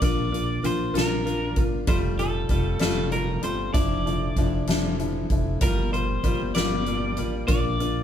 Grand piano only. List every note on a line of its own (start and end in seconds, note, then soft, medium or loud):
0.02 0.28 A#3 medium
0.02 0.28 D4 medium
0.02 0.28 F4 loud
0.32 0.58 A#3 medium
0.32 0.58 D4 medium
0.32 0.58 F4 medium
0.63 0.90 A#3 medium
0.63 0.90 D4 medium
0.63 0.90 F4 medium
0.93 1.20 A#3 medium
0.93 1.21 D4 medium
0.93 1.21 F4 medium
1.25 1.52 A#3 medium
1.25 1.52 D4 medium
1.25 1.52 F4 medium
1.57 1.83 A#3 medium
1.57 1.83 D4 medium
1.57 1.83 F4 medium
1.87 2.14 G3 loud
1.87 2.14 A3 medium
1.87 2.14 F4 loud
2.18 2.45 G3 medium
2.18 2.45 A3 medium
2.18 2.45 F4 medium
2.50 2.76 G3 medium
2.50 2.77 A3 medium
2.50 2.77 F4 medium
2.80 3.07 G3 medium
2.80 3.07 A3 medium
2.80 3.07 F4 loud
3.11 3.38 G3 medium
3.11 3.38 A3 medium
3.11 3.39 F4 medium
3.42 3.69 G3 medium
3.42 3.69 A3 medium
3.42 3.70 F4 medium
3.73 4.00 F3 medium
3.73 4.00 D4 medium
3.73 4.01 E4 loud
4.06 4.32 F3 medium
4.06 4.32 D4 medium
4.06 4.32 E4 medium
4.38 4.64 F3 medium
4.38 4.64 D4 medium
4.38 4.64 E4 medium
4.68 4.94 F3 medium
4.68 4.95 D4 medium
4.68 4.95 E4 medium
4.99 5.25 F3 medium
4.99 5.25 D4 medium
4.99 5.26 E4 medium
5.32 5.57 F3 medium
5.32 5.57 D4 medium
5.32 5.57 E4 medium
5.61 5.88 G3 medium
5.61 5.88 A#3 medium
5.61 5.88 F4 loud
5.92 6.19 G3 medium
5.92 6.19 A#3 medium
5.92 6.19 F4 medium
6.24 6.50 G3 medium
6.24 6.50 A#3 medium
6.24 6.50 F4 medium
6.56 6.81 G3 medium
6.56 6.81 A#3 medium
6.56 6.82 F4 loud
6.87 7.13 G3 medium
6.87 7.13 A#3 medium
6.87 7.13 F4 medium
7.18 7.44 G3 medium
7.18 7.43 A#3 medium
7.18 7.44 F4 medium
7.47 7.74 A#3 loud
7.47 7.74 D4 medium
7.47 7.74 F4 loud
7.80 8.03 A#3 medium
7.80 8.03 D4 medium
7.80 8.03 F4 medium